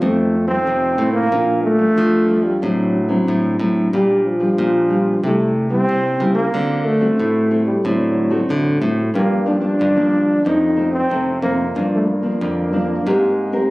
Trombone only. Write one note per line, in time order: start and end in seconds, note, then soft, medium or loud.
0.02 0.47 A3 medium
0.48 1.10 C4 loud
1.13 1.60 A#3 loud
1.63 2.45 A3 loud
2.43 2.64 G3 medium
2.62 3.60 F#3 medium
3.93 4.23 G3 medium
4.24 5.19 F3 medium
5.24 5.69 A3 medium
5.70 6.33 C4 loud
6.35 6.87 A#3 medium
6.85 7.65 A3 medium
7.65 7.86 G3 medium
7.84 8.82 F#3 medium
9.16 9.46 A#3 medium
9.48 10.48 D4 loud
10.46 10.92 D#4 loud
10.92 11.39 C4 loud
11.42 11.88 A#3 medium
11.94 12.10 A3 medium
12.08 13.70 A#3 medium